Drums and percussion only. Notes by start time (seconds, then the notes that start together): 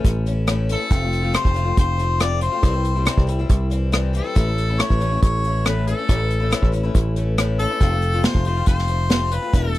0.05 kick, closed hi-hat
0.27 closed hi-hat
0.47 cross-stick, closed hi-hat
0.69 closed hi-hat
0.91 kick, closed hi-hat
1.13 closed hi-hat
1.34 cross-stick, closed hi-hat
1.45 kick
1.56 closed hi-hat
1.77 kick, closed hi-hat
2.00 closed hi-hat
2.20 cross-stick, closed hi-hat
2.41 closed hi-hat
2.63 kick, closed hi-hat
2.85 closed hi-hat
3.06 cross-stick, closed hi-hat
3.18 kick
3.29 closed hi-hat
3.49 kick, closed hi-hat
3.71 closed hi-hat
3.93 cross-stick, closed hi-hat
4.15 closed hi-hat
4.36 kick, closed hi-hat
4.58 closed hi-hat
4.79 cross-stick, closed hi-hat
4.90 kick
5.01 closed hi-hat
5.23 kick, closed hi-hat
5.44 closed hi-hat
5.65 cross-stick, closed hi-hat
5.87 closed hi-hat
6.09 kick, closed hi-hat
6.31 closed hi-hat
6.52 cross-stick, closed hi-hat
6.63 kick
6.73 closed hi-hat
6.95 kick, closed hi-hat
7.16 closed hi-hat
7.38 cross-stick, closed hi-hat
7.59 closed hi-hat
7.81 kick, closed hi-hat
8.02 closed hi-hat
8.24 snare, closed hi-hat
8.35 kick
8.45 closed hi-hat
8.66 kick, closed hi-hat
8.79 snare
8.88 closed hi-hat
9.10 snare, closed hi-hat
9.32 closed hi-hat
9.54 kick, closed hi-hat
9.75 closed hi-hat